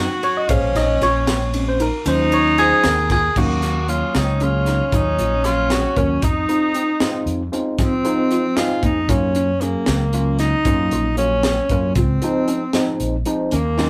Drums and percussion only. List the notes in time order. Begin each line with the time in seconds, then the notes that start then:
0.23 ride
0.49 kick, ride, shaker
0.75 snare, ride
1.01 snare, ride
1.27 snare, ride
1.54 ride
1.80 ride, shaker
2.06 ride, shaker
2.32 ride
2.58 snare, ride
2.84 snare, ride
3.10 kick, snare, ride, shaker
3.36 kick, crash, shaker
3.62 snare, closed hi-hat
3.88 closed hi-hat, shaker
4.15 snare, closed hi-hat
4.40 closed hi-hat
4.66 snare, closed hi-hat
4.92 kick, closed hi-hat, shaker
5.19 closed hi-hat
5.44 snare, closed hi-hat
5.70 snare, closed hi-hat
5.96 kick, closed hi-hat
6.22 kick, closed hi-hat, shaker
6.49 closed hi-hat
6.74 closed hi-hat, shaker
7.00 snare, closed hi-hat
7.27 closed hi-hat
7.53 closed hi-hat
7.78 kick, snare, closed hi-hat, shaker
8.05 closed hi-hat
8.31 closed hi-hat
8.57 snare, closed hi-hat
8.83 kick, closed hi-hat
9.09 kick, closed hi-hat, shaker
9.35 closed hi-hat
9.61 closed hi-hat, shaker
9.86 snare, closed hi-hat
10.13 closed hi-hat
10.39 snare, closed hi-hat
10.65 kick, closed hi-hat, shaker
10.91 closed hi-hat
11.17 closed hi-hat
11.43 snare, closed hi-hat
11.69 kick, closed hi-hat
11.95 kick, closed hi-hat, shaker
12.22 closed hi-hat
12.48 closed hi-hat, shaker
12.73 snare, closed hi-hat
13.00 closed hi-hat
13.25 closed hi-hat
13.51 closed hi-hat, shaker
13.78 snare, shaker